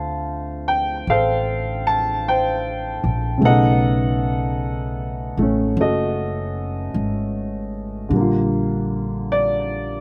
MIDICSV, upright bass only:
0, 0, Header, 1, 2, 480
1, 0, Start_track
1, 0, Tempo, 1174168
1, 1397, Time_signature, 4, 2, 24, 8
1, 4090, End_track
2, 0, Start_track
2, 0, Title_t, "Upright bass"
2, 0, Program_c, 0, 32
2, 0, Note_on_c, 0, 38, 64
2, 418, Note_off_c, 0, 38, 0
2, 439, Note_on_c, 0, 33, 66
2, 1221, Note_off_c, 0, 33, 0
2, 1241, Note_on_c, 0, 34, 58
2, 1389, Note_off_c, 0, 34, 0
2, 1397, Note_on_c, 0, 35, 64
2, 2181, Note_off_c, 0, 35, 0
2, 2197, Note_on_c, 0, 33, 58
2, 2347, Note_off_c, 0, 33, 0
2, 2358, Note_on_c, 0, 30, 69
2, 2821, Note_off_c, 0, 30, 0
2, 2838, Note_on_c, 0, 32, 64
2, 3300, Note_off_c, 0, 32, 0
2, 3313, Note_on_c, 0, 34, 68
2, 4090, Note_off_c, 0, 34, 0
2, 4090, End_track
0, 0, End_of_file